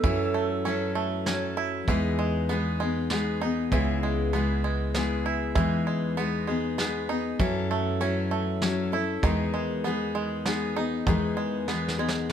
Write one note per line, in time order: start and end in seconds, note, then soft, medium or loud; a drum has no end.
0.00 1.84 F#2 medium
0.00 1.87 E3 medium
0.00 0.64 F#3 medium
0.00 0.10 D#4 medium
0.00 0.92 A4 medium
0.00 kick medium
0.00 closed hi-hat soft
0.04 0.65 C#4 medium
0.04 0.67 E4 medium
0.04 0.66 A4 loud
0.34 0.94 A3 medium
0.65 1.26 F#3 medium
0.65 1.25 C#4 medium
0.65 1.27 C#4 medium
0.65 1.28 E4 medium
0.65 1.28 A4 medium
0.65 closed hi-hat medium
0.95 1.94 A3 medium
1.26 1.88 F#3 medium
1.26 1.94 C#4 medium
1.26 1.89 C#4 medium
1.26 1.89 E4 medium
1.26 1.90 A4 medium
1.26 snare medium
1.26 closed hi-hat medium
1.57 2.97 E4 medium
1.88 3.69 E2 medium
1.88 2.55 E3 medium
1.88 3.71 E3 medium
1.88 2.49 G#3 medium
1.88 2.51 B3 medium
1.88 2.50 D#4 loud
1.88 2.52 G#4 medium
1.88 kick medium
1.88 closed hi-hat medium
2.19 2.80 G#3 medium
2.49 2.80 G#3 medium
2.49 3.11 B3 medium
2.49 2.81 B3 medium
2.49 2.82 D#4 medium
2.49 2.80 G#4 medium
2.49 closed hi-hat medium
2.80 4.03 G#3 medium
2.80 3.11 B3 soft
2.80 3.11 D#4 soft
2.80 3.11 G#4 medium
3.10 3.42 G#3 medium
3.10 4.33 B3 medium
3.10 3.42 B3 medium
3.10 3.42 D#4 medium
3.10 3.41 G#4 medium
3.10 snare medium
3.10 closed hi-hat medium
3.41 3.72 B3 soft
3.41 3.78 D#4 medium
3.41 3.73 D#4 medium
3.41 3.73 G#4 medium
3.71 5.53 C#2 medium
3.71 4.33 C#3 medium
3.71 5.54 E3 medium
3.71 4.34 G#3 medium
3.71 4.34 B3 medium
3.71 4.35 E4 medium
3.71 4.36 G#4 medium
3.71 kick medium
3.71 closed hi-hat medium
4.03 4.64 G#3 medium
4.33 4.94 G#3 medium
4.33 4.94 B3 medium
4.33 4.95 B3 medium
4.33 4.96 E4 medium
4.33 4.96 G#4 medium
4.33 closed hi-hat medium
4.64 5.62 G#3 medium
4.94 5.56 G#3 medium
4.94 5.63 B3 soft
4.94 5.56 B3 medium
4.94 5.57 E4 medium
4.94 5.58 G#4 medium
4.94 snare medium
4.94 closed hi-hat medium
5.26 6.66 E4 medium
5.55 7.36 E2 medium
5.55 7.38 E3 medium
5.55 6.22 E3 medium
5.55 6.16 G#3 medium
5.55 6.17 B3 medium
5.55 6.18 D#4 medium
5.55 6.19 G#4 medium
5.55 kick medium
5.55 closed hi-hat soft
5.87 6.46 G#3 medium
6.17 6.48 G#3 medium
6.17 6.77 B3 medium
6.17 6.49 B3 medium
6.17 6.48 D#4 medium
6.17 6.47 G#4 medium
6.17 closed hi-hat medium
6.47 7.46 G#3 medium
6.47 6.78 B3 soft
6.47 6.78 D#4 medium
6.47 6.79 G#4 medium
6.78 7.09 G#3 medium
6.78 7.46 B3 medium
6.78 7.10 B3 medium
6.78 7.09 D#4 medium
6.78 7.08 G#4 medium
6.78 snare medium
6.78 closed hi-hat medium
7.09 7.40 B3 soft
7.09 7.46 D#4 medium
7.09 7.40 D#4 soft
7.09 7.40 G#4 medium
7.39 9.20 F#2 medium
7.39 9.23 E3 medium
7.39 7.99 F#3 medium
7.39 8.00 C#4 medium
7.39 8.02 E4 medium
7.39 8.02 A4 loud
7.39 kick medium
7.39 closed hi-hat medium
7.71 8.30 A3 medium
8.00 8.61 F#3 medium
8.00 8.61 C#4 medium
8.00 8.62 C#4 medium
8.00 8.63 E4 medium
8.00 8.63 A4 medium
8.00 closed hi-hat medium
8.31 9.30 A3 medium
8.62 8.93 F#3 medium
8.62 9.30 C#4 medium
8.62 8.93 C#4 medium
8.62 8.92 E4 medium
8.62 8.91 A4 medium
8.62 snare medium
8.62 closed hi-hat medium
8.92 9.24 C#4 soft
8.92 10.33 E4 medium
8.92 9.24 E4 soft
8.92 9.23 A4 medium
9.23 11.03 E2 medium
9.23 11.06 D#3 medium
9.23 9.90 E3 medium
9.23 9.85 G#3 medium
9.23 9.86 B3 medium
9.23 9.86 D#4 medium
9.23 9.87 G#4 medium
9.23 kick medium
9.23 closed hi-hat soft
9.54 10.15 G#3 medium
9.84 10.46 G#3 medium
9.84 10.45 B3 medium
9.84 10.47 B3 medium
9.84 10.47 D#4 medium
9.84 10.48 G#4 medium
9.84 closed hi-hat medium
10.15 11.13 G#3 medium
10.46 10.77 G#3 medium
10.46 11.13 B3 medium
10.46 10.77 B3 medium
10.46 10.77 D#4 medium
10.46 10.75 G#4 medium
10.46 snare medium
10.46 closed hi-hat medium
10.77 11.07 B3 soft
10.77 11.14 D#4 medium
10.77 11.07 D#4 medium
10.77 11.07 G#4 medium
11.07 12.32 E2 medium
11.07 12.32 D#3 medium
11.07 11.69 E3 medium
11.07 11.67 G#3 medium
11.07 11.68 B3 loud
11.07 11.68 D#4 medium
11.07 11.70 G#4 medium
11.07 kick medium
11.07 closed hi-hat soft
11.37 11.98 G#3 medium
11.68 11.99 G#3 medium
11.68 12.30 B3 medium
11.68 12.00 B3 medium
11.68 11.98 D#4 medium
11.68 11.97 G#4 medium
11.68 snare medium
11.88 snare medium
11.98 12.32 G#3 medium
11.98 12.29 B3 soft
11.98 12.30 D#4 soft
11.98 12.30 G#4 medium
12.09 snare medium